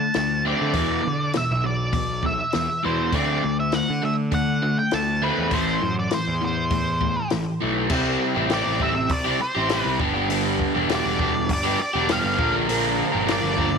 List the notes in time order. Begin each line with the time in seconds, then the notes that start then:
Already playing: D3 A3 A5
0.14 D2 D3 A3, snare, open hi-hat
0.45 D3 A3 C4 D5
0.61 D3
0.73 E2 B2 E3, kick, open hi-hat
1.03 E2 B2 D3
1.33 E2 B2 E5, snare, open hi-hat
1.51 B1
1.64 E2 B2 D5
1.93 E2 B2, kick, open hi-hat
2.23 E2 B2 E5, kick
2.52 E2 B2, snare, open hi-hat
2.83 E2 B2 E3 C5
3.12 D2 D3 A3 C4 D5, kick, open hi-hat
3.43 D2 D3 A3
3.60 E5
3.72 D3 A3 F#5, snare, open hi-hat
3.90 D3
4.02 D3 A3 E5
4.32 D3 A3 F#5, kick, open hi-hat
4.62 D3 A3
4.79 G5
4.91 D2 D3 A3 A5, snare, open hi-hat
5.22 D3 A3 C4 B4
5.38 E2
5.51 A1 A2 E3 A3 C5, kick, open hi-hat
5.82 F#2 A2 E3
5.99 D5
6.11 A2 E3 C5, snare, open hi-hat
6.27 E2
6.41 A2 E3 C5
6.70 A2 E3, kick, open hi-hat
7.01 A2 E3, kick
7.30 A1 A2 E3, snare, open hi-hat
7.61 B1 A2 E3 A3
7.90 C2 C3 G3 C4 E4 G4, kick, crash
8.35 A1 C4 E4 G4
8.49 C3 G3 C4 E4 G4, snare, open hi-hat
8.54 D5
8.67 A1
8.79 G3 C4 E4 G4 E5, kick
8.95 muted overdriven electric guitar stroke
9.09 C2 D5, kick, open hi-hat
9.25 C4 E4 G4
9.40 C5, muted overdriven electric guitar stroke
9.55 A1 C4 E4 G4
9.69 C3 G3 C4 E4 G4, snare, open hi-hat
9.82 B4
9.86 C2
9.99 G1 G2 D3 G3 B3 D4 G4, kick
10.14 G3 B3 D4 G4
10.29 G2 D3 G3 B3 D4 G4, open hi-hat
10.59 kick
10.74 E1 G3 B3 D4 G4
10.89 G2 D3 G3 B3 D4 G4, snare, open hi-hat
10.95 D5
11.06 E1
11.19 G3 B3 D4 G4, kick
11.35 muted overdriven electric guitar stroke
11.49 G1, kick, open hi-hat
11.53 D5
11.64 G3 B3 D4 G4
11.79 D5, muted overdriven electric guitar stroke
11.93 E1 G3 B3 D4 G4
12.08 G2 D3 G3 B3 D4 G4, snare, open hi-hat
12.13 F5
12.24 G1
12.38 A#1 A#2 D3 F3 A#3 D4 A#4, kick
12.52 F3 A#3 D4 A#4
12.68 A#2 D3 F3 A#3 D4 A#4, open hi-hat
13.12 G1 F3 A#3 D4 A#4
13.26 A#2 D3 F3 A#3 D4 A#4, snare, open hi-hat
13.32 D5
13.44 G1
13.56 F3 A#3 D4 A#4, kick
13.71 muted overdriven electric guitar stroke